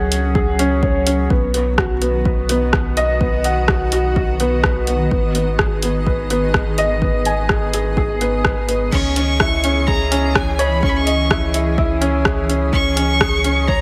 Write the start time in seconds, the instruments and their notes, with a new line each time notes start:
Already playing: sub bass C#2, ambient pad F#3 C#4, felt piano C#4 G#4 C#5 F#5 G#5
0.12 closed hi-hat
0.35 felt piano G#4, kick
0.59 felt piano C#4, closed hi-hat
0.83 felt piano C#5, kick
1.07 felt piano C#4, closed hi-hat
1.30 sub bass B1, ambient pad D#3, felt piano B3, kick
1.37 ambient pad B3
1.51 felt piano B3, ambient pad D#5, closed hi-hat
1.78 felt piano F#4, kick, cross-stick
2.02 felt piano B3, closed hi-hat
2.25 ambient pad F#4, felt piano B4, kick
2.49 felt piano B3, closed hi-hat
2.73 kick, cross-stick
2.97 felt piano D#5, closed hi-hat
3.21 felt piano B3, kick
3.44 felt piano F#5, closed hi-hat
3.68 felt piano F#4, kick, cross-stick
3.92 felt piano F#4, closed hi-hat
4.16 felt piano F#4, kick
4.40 felt piano B3, closed hi-hat
4.64 felt piano B4, kick, cross-stick
4.87 felt piano B3, closed hi-hat
5.11 sub bass G#1, felt piano B3, kick
5.35 felt piano B3, closed hi-hat
5.44 ambient pad G#4
5.59 felt piano G#4, kick, cross-stick
5.83 felt piano B3, closed hi-hat
6.07 felt piano B4, kick
6.30 felt piano B3, closed hi-hat
6.54 kick, cross-stick
6.78 felt piano D#5, closed hi-hat
7.02 felt piano B3, kick
7.25 felt piano G#5, closed hi-hat
7.49 felt piano G#4, kick, cross-stick
7.73 felt piano G#4, closed hi-hat
7.97 felt piano G#4, kick
8.21 felt piano B3, closed hi-hat
8.45 felt piano B4, kick, cross-stick
8.69 felt piano B3, closed hi-hat
8.91 sub bass C#2, ambient pad E3, felt piano C#4, violin C#6, kick, crash
9.16 felt piano C#4, closed hi-hat
9.38 ambient pad C#4, felt piano E4, kick, cross-stick
9.64 felt piano C#4, closed hi-hat
9.87 felt piano G#4, violin A#5, kick
10.12 felt piano C#4, closed hi-hat
10.35 violin G#5, kick, cross-stick
10.59 felt piano C#5, violin B5, closed hi-hat
10.83 felt piano C#4, violin C#6, kick
10.89 violin B5
10.97 violin C#6
11.06 felt piano D#5, closed hi-hat
11.31 felt piano E4, kick, cross-stick
11.54 felt piano E4, closed hi-hat
11.78 felt piano E4, kick
12.01 felt piano C#4, closed hi-hat
12.25 felt piano G#4, kick, cross-stick
12.49 felt piano C#4, closed hi-hat
12.72 sub bass C#2, ambient pad F#3, felt piano C#4, violin C#6, kick
12.96 felt piano C#4, closed hi-hat
13.21 felt piano G#4, kick, cross-stick
13.44 felt piano C#4, closed hi-hat
13.67 felt piano C#5, violin A#5, kick